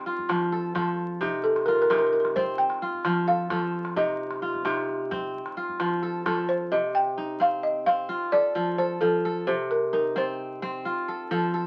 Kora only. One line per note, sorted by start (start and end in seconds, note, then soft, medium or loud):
0.00 1.41 C4 medium
0.00 0.77 D#4 medium
0.06 1.57 F4 medium
0.29 0.74 F3 medium
0.52 0.75 A4 medium
0.75 1.27 F3 medium
0.75 2.07 A4 medium
1.21 1.89 C3 medium
1.21 1.90 D#4 medium
1.68 2.82 F4 medium
1.90 2.64 C3 medium
1.90 3.52 D#4 medium
2.36 4.16 C4 medium
2.82 4.34 F4 medium
3.05 3.49 F3 medium
3.27 3.50 A4 medium
3.50 4.02 F3 medium
3.50 4.82 A4 medium
3.96 4.64 C3 medium
3.96 4.65 D#4 medium
4.42 5.57 F4 medium
4.65 5.39 C3 medium
4.65 6.27 D#4 medium
5.11 6.91 C4 medium
5.57 7.08 F4 medium
5.80 6.25 F3 medium
6.03 6.26 A4 medium
6.26 6.77 F3 medium
6.26 7.58 A4 medium
6.72 8.15 C3 medium
7.18 8.80 D#4 medium
7.40 7.86 C4 medium
7.86 9.66 C4 medium
8.09 9.60 F4 medium
8.33 8.55 A4 medium
8.55 9.00 F3 medium
8.55 8.78 A4 medium
8.78 9.25 A4 medium
9.01 9.52 F3 medium
9.25 10.57 A4 medium
9.47 10.90 C3 medium
9.93 11.55 D#4 medium
10.16 10.62 C4 medium
10.62 11.67 C4 medium
10.85 11.67 F4 medium
11.08 11.31 A4 medium
11.31 11.67 F3 medium
11.31 11.54 A4 medium
11.54 11.67 A4 medium